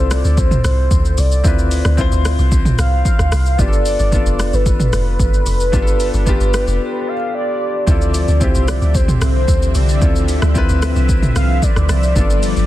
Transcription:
Already playing: log drum bass C2, grand piano C4 E4 F4 A4, soft synth lead C5
0.11 soft synth lead D5, cross-stick, open hi-hat, shaker
0.25 log drum bass D2, shaker
0.38 soft synth lead C5, kick, shaker
0.51 mid tom, shaker
0.64 log drum bass C2, soft synth lead C5, cross-stick, open hi-hat, shaker
0.91 log drum bass D2, kick, shaker
1.05 shaker
1.18 log drum bass C2, soft synth lead D5, open hi-hat, shaker
1.32 shaker
1.44 log drum bass D2, grand piano C4 E4 F4 B4, kick, shaker
1.59 shaker
1.71 open hi-hat, shaker
1.85 log drum bass D2, cross-stick, shaker
1.97 grand piano C4 E4 F4 C5, kick, shaker
2.12 log drum bass D2, shaker
2.25 cross-stick, open hi-hat, shaker
2.39 log drum bass C2, shaker
2.52 kick, shaker
2.65 mid tom, shaker
2.79 log drum bass C2, soft synth lead F5, cross-stick, open hi-hat, shaker
3.05 kick, shaker
3.19 log drum bass D2, cross-stick, shaker
3.32 log drum bass C2, cross-stick, open hi-hat, shaker
3.46 shaker
3.58 log drum bass G1, grand piano B3 D4 F4 G4, soft synth lead D5, kick, shaker
3.68 grand piano A4
3.73 shaker
3.86 soft synth lead D5, open hi-hat, shaker
3.99 log drum bass G1, shaker
4.11 grand piano B3 D4 F4 A4, kick, shaker
4.26 log drum bass F1, shaker
4.39 cross-stick, open hi-hat, shaker
4.53 log drum bass G1, soft synth lead B4, shaker
4.66 soft synth lead B4, kick, shaker
4.80 mid tom, shaker
4.93 log drum bass F1, cross-stick, open hi-hat, shaker
5.20 log drum bass G1, kick, shaker
5.34 shaker
5.46 log drum bass F1, open hi-hat, shaker
5.60 shaker
5.72 log drum bass G1, grand piano B3 D4 F4 G4, kick, shaker
5.82 grand piano A4
5.87 shaker
6.00 open hi-hat, shaker
6.14 log drum bass G1, shaker
6.26 grand piano B3 D4 F4 G4, kick, shaker
6.41 log drum bass G1, shaker
6.54 cross-stick, open hi-hat, shaker
6.67 log drum bass F1, shaker
7.08 soft synth lead F5
7.35 soft synth lead D5
7.86 log drum bass D2, analog synth pad D3 F3 C4 E5, grand piano C4 E4 F4 A4, soft synth lead D5, kick, shaker
8.02 shaker
8.14 open hi-hat, shaker
8.28 log drum bass D2, shaker
8.40 grand piano C4 E4 F4 G4, soft synth lead C5, kick, shaker
8.55 log drum bass C2, shaker
8.68 soft synth lead D5, cross-stick, open hi-hat, shaker
8.82 log drum bass D2, shaker
8.95 soft synth lead C5, kick, shaker
9.08 mid tom, shaker
9.21 log drum bass C2, soft synth lead C5, cross-stick, open hi-hat, shaker
9.48 log drum bass D2, kick, shaker
9.62 shaker
9.75 log drum bass C2, soft synth lead D5, open hi-hat, shaker
9.89 shaker
10.01 log drum bass D2, grand piano C4 E4 F4 A4, kick, shaker
10.16 shaker
10.28 open hi-hat, shaker
10.42 log drum bass D2, cross-stick, shaker
10.54 grand piano C4 E4 F4 B4, kick, shaker
10.69 log drum bass D2, shaker
10.82 cross-stick, open hi-hat, shaker
10.96 log drum bass C2, shaker
11.09 kick, shaker
11.23 mid tom, shaker
11.36 log drum bass C2, soft synth lead F5, cross-stick, open hi-hat, shaker
11.62 soft synth lead D5, kick, shaker
11.76 log drum bass D2, cross-stick, shaker
11.89 log drum bass C2, cross-stick, open hi-hat, shaker
12.03 shaker
12.15 log drum bass G1, analog synth pad G3 B4, grand piano B3 D4 F4 A4, soft synth lead D5, kick, shaker
12.30 shaker
12.43 open hi-hat, shaker
12.56 log drum bass G1, shaker

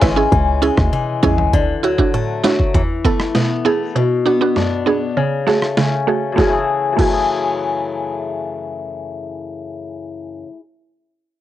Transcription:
Already playing: steel-string acoustic guitar C#3 E3 G#3
0.01 808-style bass G#1, steel-string acoustic guitar C#4, synth pluck E4 B4, kick, snare
0.16 synth pluck C#4 E4 G#4
0.32 808-style bass C#2, steel-string acoustic guitar E3, kick
0.62 steel-string acoustic guitar G#3, synth pluck C#4 E4 G#4
0.77 808-style bass D2, kick, cross-stick
0.93 steel-string acoustic guitar E3, high tom
1.23 808-style bass A1, steel-string acoustic guitar G#3, synth pluck C#4 E4 G#4, mid tom
1.38 floor tom
1.53 synth pluck D2, steel-string acoustic guitar D3, kick
1.83 steel-string acoustic guitar F#3, synth pluck E4 F#4
1.98 synth pluck D4 E4 F#4, kick
2.14 synth pluck A2, steel-string acoustic guitar A3
2.44 steel-string acoustic guitar F#3, synth pluck D4 E4 F#4, snare
2.60 kick
2.74 synth pluck E2, steel-string acoustic guitar E3, kick
3.04 steel-string acoustic guitar A3, synth pluck B3 E4 A4, kick
3.20 cross-stick
3.35 synth pluck B2, steel-string acoustic guitar B3, snare
3.65 steel-string acoustic guitar A3, synth pluck B3 E4 G#4
3.95 synth pluck B2, steel-string acoustic guitar B2
4.25 steel-string acoustic guitar B3, synth pluck D4 F#4
4.41 synth pluck B3 D4 F#4
4.56 synth pluck F#2, steel-string acoustic guitar D4, snare
4.86 synth pluck B3 D4 G#4, steel-string acoustic guitar B3
5.17 synth pluck C#3, steel-string acoustic guitar C#3
5.47 synth pluck A3 F#4 G#4, steel-string acoustic guitar A3, snare
5.62 cross-stick
5.77 synth pluck C#3, steel-string acoustic guitar C#4, snare
6.07 synth pluck A3 F#4 G#4, steel-string acoustic guitar A3
6.32 steel-string acoustic guitar F#2, synth pluck A3
6.37 steel-string acoustic guitar C#3, synth pluck E4 F#4 G#4, kick, snare
6.41 steel-string acoustic guitar E3 A3
6.49 steel-string acoustic guitar E4 G#4
6.93 steel-string acoustic guitar F#2
6.97 steel-string acoustic guitar C#3, synth pluck A3 E4 F#4, kick, crash
7.01 steel-string acoustic guitar E3, synth pluck G#4
7.06 steel-string acoustic guitar A3 E4
7.13 steel-string acoustic guitar G#4

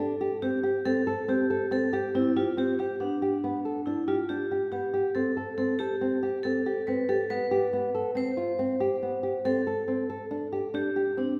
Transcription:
Already playing: vibraphone A4
0.00 nylon-string guitar D4
0.21 nylon-string guitar G4
0.42 nylon-string guitar C4, vibraphone G4
0.63 nylon-string guitar G4
0.85 nylon-string guitar C4, vibraphone A4
1.07 nylon-string guitar A4
1.28 nylon-string guitar C4, vibraphone G4
1.50 nylon-string guitar A4
1.71 nylon-string guitar C4, vibraphone A4
1.93 nylon-string guitar G4, vibraphone G4
2.15 nylon-string guitar C4, vibraphone E4
2.36 vibraphone F4, nylon-string guitar G4
2.57 nylon-string guitar C4, vibraphone G4
2.79 vibraphone G4, nylon-string guitar G4
3.00 nylon-string guitar B3, vibraphone D4
3.22 nylon-string guitar G4
3.44 nylon-string guitar B3
3.65 nylon-string guitar A4
3.86 nylon-string guitar D4, vibraphone E4
4.08 vibraphone F4, nylon-string guitar G4
4.29 nylon-string guitar D4, vibraphone G4
4.51 nylon-string guitar G4
4.72 nylon-string guitar B3, vibraphone G4
4.94 nylon-string guitar G4
5.15 nylon-string guitar C4, vibraphone A4
5.37 nylon-string guitar A4
5.58 nylon-string guitar C4, vibraphone A4
5.79 vibraphone G4, nylon-string guitar A4
6.01 nylon-string guitar C4
6.23 nylon-string guitar G4
6.43 nylon-string guitar C4, vibraphone A4
6.66 nylon-string guitar G4
6.87 nylon-string guitar C4, vibraphone B4
7.09 nylon-string guitar G4, vibraphone A4
7.30 nylon-string guitar B3, vibraphone B4
7.51 nylon-string guitar G4
7.73 nylon-string guitar B3
7.95 nylon-string guitar A4
8.15 nylon-string guitar C4, vibraphone C5
8.37 nylon-string guitar F4
8.59 nylon-string guitar C4
8.80 nylon-string guitar G4
9.02 nylon-string guitar B3
9.23 nylon-string guitar G4
9.45 nylon-string guitar C4, vibraphone A4
9.67 nylon-string guitar A4
9.88 nylon-string guitar C4
10.10 nylon-string guitar A4
10.31 nylon-string guitar D4
10.52 nylon-string guitar G4
10.74 nylon-string guitar D4, vibraphone G4
10.96 nylon-string guitar G4
11.17 nylon-string guitar C4, vibraphone D4

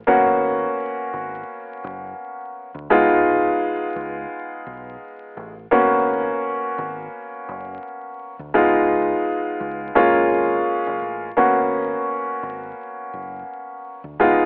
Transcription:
0.07 fingered electric bass G#1, upright piano A#3 B3 C#4 F#4
1.13 fingered electric bass G#1
1.84 fingered electric bass F#1
2.75 fingered electric bass D2
2.90 fingered electric bass C#2, upright piano G#3 B3 D#4 F4
3.96 fingered electric bass C#2
4.66 fingered electric bass B1
5.37 fingered electric bass A1
5.71 fingered electric bass G#1, upright piano A#3 B3 C#4 F#4
6.78 fingered electric bass G#1
7.49 fingered electric bass F#1
8.39 fingered electric bass D2
8.54 fingered electric bass C#2, upright piano G#3 B3 D#4 F4
9.60 fingered electric bass C#2
9.95 fingered electric bass F#1, upright piano G#3 A#3 C#4 F4
10.31 fingered electric bass G#1
10.86 fingered electric bass F#1
11.02 fingered electric bass A1
11.37 fingered electric bass G#1, upright piano A#3 B3 C#4 F#4
12.43 fingered electric bass G#1
13.13 fingered electric bass F#1
14.04 fingered electric bass D2
14.19 fingered electric bass C#2, upright piano G#3 B3 D#4 F4

